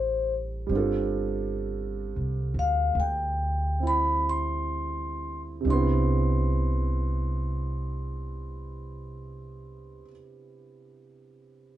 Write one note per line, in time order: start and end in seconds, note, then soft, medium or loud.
0.00 0.65 A1 medium
0.00 0.65 G3 soft
0.00 0.68 C4 soft
0.00 0.71 D4 soft
0.00 0.72 F4 soft
0.00 0.72 A4 soft
0.00 0.33 C5 medium
0.67 2.12 G1 medium
0.67 5.64 G3 soft
0.67 3.78 C4 soft
0.72 5.65 D4 soft
0.72 5.68 F4 soft
0.77 5.69 A4 medium
2.16 2.53 C2 soft
2.54 2.92 D2 medium
2.59 2.99 F5 medium
2.95 5.61 D2 medium
3.00 3.85 G5 medium
3.80 5.62 C4 soft
3.80 5.67 E4 soft
3.87 4.24 B5 medium
4.29 5.40 C6 medium
5.61 10.01 C3 soft
5.61 10.04 C4 soft
5.65 10.01 C2 medium
5.65 10.07 D4 soft
5.69 10.13 B3 soft
5.69 10.09 E4 soft
5.69 10.06 C6 medium